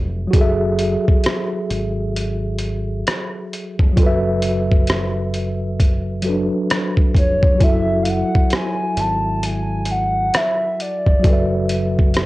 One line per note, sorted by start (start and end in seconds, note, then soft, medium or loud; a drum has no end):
0.00 0.26 F1 medium
0.00 0.26 F#3 medium
0.00 0.28 F#4 medium
0.00 0.30 A4 medium
0.00 0.31 B4 medium
0.00 0.33 E5 medium
0.27 3.90 F#3 medium
0.27 3.92 F#4 medium
0.33 0.95 F#1 loud
0.33 3.93 G#4 medium
0.33 kick loud
0.33 closed hi-hat medium
0.38 3.95 A4 medium
0.38 3.97 E5 medium
0.79 closed hi-hat medium
1.08 kick medium
1.24 cross-stick loud
1.24 closed hi-hat medium
1.70 3.02 G#1 medium
1.70 closed hi-hat medium
2.16 closed hi-hat medium
2.58 closed hi-hat medium
3.07 cross-stick loud
3.07 closed hi-hat medium
3.53 closed hi-hat medium
3.79 3.94 F1 medium
3.79 kick medium
3.93 6.18 F#3 medium
3.93 4.05 F4 medium
3.97 6.48 F#1 loud
3.97 6.22 A4 medium
3.97 kick loud
3.97 closed hi-hat medium
4.03 6.23 F#4 medium
4.03 6.23 B4 medium
4.03 6.25 E5 loud
4.42 closed hi-hat medium
4.72 kick medium
4.87 cross-stick loud
4.87 closed hi-hat medium
5.34 closed hi-hat medium
5.80 kick medium
5.80 closed hi-hat medium
6.22 7.54 F#3 medium
6.22 7.57 F#4 soft
6.22 7.61 A4 medium
6.22 closed hi-hat medium
6.28 7.63 D4 medium
6.28 7.62 B4 soft
6.70 cross-stick loud
6.70 closed hi-hat medium
6.97 kick medium
7.14 7.53 F1 medium
7.14 7.65 C#5 loud
7.14 kick medium
7.14 closed hi-hat medium
7.43 kick medium
7.55 11.17 F#3 medium
7.55 11.19 F#4 medium
7.61 8.22 F#1 loud
7.61 11.21 E4 medium
7.61 8.04 E5 loud
7.61 kick loud
7.61 closed hi-hat medium
7.65 11.23 A4 medium
7.65 11.24 E5 medium
8.03 8.11 F5 medium
8.03 closed hi-hat medium
8.09 8.53 F#5 loud
8.35 kick medium
8.50 cross-stick loud
8.50 closed hi-hat medium
8.55 9.02 G#5 loud
8.97 10.29 G#1 medium
8.97 9.47 A5 medium
8.97 closed hi-hat medium
9.43 9.93 G#5 loud
9.43 closed hi-hat medium
9.85 closed hi-hat medium
9.91 10.38 F#5 loud
10.34 10.83 E5 loud
10.34 cross-stick loud
10.34 closed hi-hat medium
10.80 11.71 D5 medium
10.80 closed hi-hat medium
11.06 11.21 F1 medium
11.06 kick medium
11.19 12.26 F#3 medium
11.19 12.26 F#4 medium
11.24 12.26 F#1 loud
11.24 12.26 A4 medium
11.24 kick loud
11.24 closed hi-hat medium
11.30 12.26 B4 medium
11.30 12.26 E5 medium
11.69 closed hi-hat medium
11.99 kick medium
12.14 cross-stick loud
12.14 closed hi-hat medium